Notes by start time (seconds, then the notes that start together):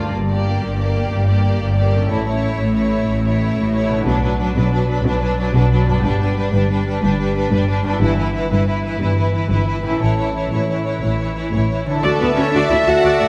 Already playing: G2 A#3 F4 D5
0.00 D4
0.04 G4
0.09 A#4
0.13 G1 G2
0.30 A#3 G4 D5
0.62 G1 G2
0.78 A#3 G4 D5
1.11 G1 G2
1.28 A#3 G4 D5
1.60 G1 G2
1.76 A#3 G4 D5
1.92 A2
1.96 C#4
2.01 E4
2.06 A4
2.10 A1 A2 A3 E4 C#5
2.26 A3 E4 C#5
2.59 A1 A2
2.75 A3 E4 C#5
3.08 A1 A2
3.24 A3 E4 C#5
3.57 A1 A2
3.73 A3 E4 C#5
3.89 B2
3.94 B3
3.98 D4
4.02 B1 D4 F#4
4.06 B2 F#3 B4
4.23 F#3 D4 B4
4.39 F#3 D4 B4
4.56 B1 B2 F#3 D4 B4
4.72 F#3 D4 B4
4.88 F#3 D4 B4
5.04 B1 B2 F#3 D4 B4
5.22 F#3 D4 B4
5.38 F#3 D4 B4
5.54 B1 B2 F#3 D4 B4
5.71 F#3 D4 B4
5.86 G2 F#3 D4 B4
5.91 B3
5.95 D4
6.00 G2 D4 G4 B4
6.04 G1 G3
6.20 G3 D4 B4
6.36 G3 D4 B4
6.52 G1 G2 G3 D4 B4
6.71 G3 D4 B4
6.86 G3 D4 B4
7.02 G1 G2 G3 D4 B4
7.19 G3 D4 B4
7.36 G3 D4 B4
7.52 G1 G2 G3 D4 B4
7.68 G3 D4 B4
7.84 G2 G3 D4 B4
7.88 B3
7.93 E4
7.98 G1 G2 E4 B4
8.02 E3
8.18 E3 E4 B4
8.34 E3 E4 B4
8.51 G1 G2 E3 E4 B4
8.67 E3 E4 B4
8.84 E3 E4 B4
9.00 G1 G2 E3 E4 B4
9.17 E3 E4 B4
9.33 E3 E4 B4
9.49 G1 G2 E3 E4 B4
9.67 E3 E4 B4
9.83 A2 E3 E4 B4
9.87 C#4
9.92 E4
9.96 A4
10.01 A1 A2 E3 E4 C#5
10.18 E3 E4 C#5
10.35 E3 E4 C#5
10.51 A1 A2 E3 E4 C#5
10.68 E3 E4 C#5
10.85 E3 E4 C#5
11.01 A1 A2 E3 E4 C#5
11.18 E3 E4 C#5
11.36 E3 E4 C#5
11.53 A1 A2 E3 E4 C#5
11.69 E3 E4 C#5
11.86 D3 E3 E4 C#5
11.90 D4
11.95 E4
12.00 A4 D5 E5 A5
12.04 D2 A3 F#4 A4 D5 E5
12.20 D2 B3 F#4 B4 D5
12.36 D2 C#4 F#4 A4 C#5
12.53 D2 D4 F#4 D5
12.70 D2 E4 F#4 D5 E5
12.86 D2 F#4 A4 F#5
13.03 D2 F#4 D5
13.20 D2 F#4 D5